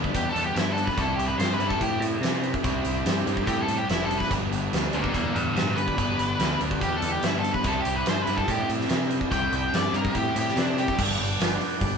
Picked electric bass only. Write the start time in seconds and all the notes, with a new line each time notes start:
0.15 E2
0.35 E2
0.56 G2
0.98 C2
1.17 C2
1.39 G2
1.59 G2
1.81 A2
2.00 A2
2.21 C3
2.64 C2
2.85 C2
3.05 G2
3.27 G2
3.47 A2
3.68 A2
3.89 F1
4.31 G1
4.51 G1
4.73 D2
4.93 D2
5.15 E2
5.35 E2
5.56 G2
5.98 G1
6.18 G1
6.39 D2
6.61 D2
6.82 E2
7.02 E2
7.23 G2
7.64 C2
7.86 C2
8.07 G2
8.28 G2
8.48 A2
8.69 A2
8.90 C3
9.31 C2
9.52 C2
9.73 G2
9.93 G2
10.15 A2
10.36 A2
10.57 C3
10.99 G1
11.18 G1
11.39 G1
11.60 muted picked electric bass stroke
11.81 G1